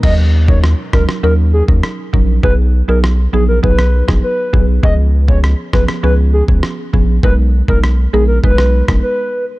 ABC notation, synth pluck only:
X:1
M:4/4
L:1/16
Q:1/4=100
K:Ebm
V:1 name="Synth pluck"
[G,DEB] z2 [G,DEB] z2 [G,DEB] z [G,DEB]3 [G,DEB] z2 [G,DEB] z | [^F,=B,^D^G] z2 [F,B,DG] z2 [F,B,DG] z [F,B,DG]3 [F,B,DG] z2 [F,B,DG] z | [F,CDA] z2 [F,CDA] z2 [F,CDA] z [F,CDA]3 [F,CDA] z2 [F,CDA] z | [A,CEB] z2 [A,CEB] z2 [A,CEB] z [A,CEc]3 [A,CEB] z4 |]